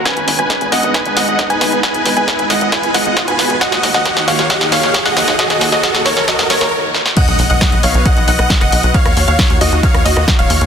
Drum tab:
CC |----------------|----------------|----------------|----------------|
HH |xxoxxxoxxxoxxxox|xxoxxxoxxxoxxxox|xxo-xxoxxxoxxxox|xxoxxxo-xxox----|
SD |o-o-o-o-o-o-o-o-|o-o-o-o-o-o-o-o-|oooooooooooooooo|oooooooooooo--oo|
BD |o---o---o---o---|o---o---o---o---|o---o---o---o---|o---o---o-------|

CC |x---------------|----------------|
HH |xxoxxxoxxxoxxxox|xxoxxxoxxxoxxxox|
SD |----o------ror--|-r--o----r-ro---|
BD |o---o---o---o---|o---o---o---o---|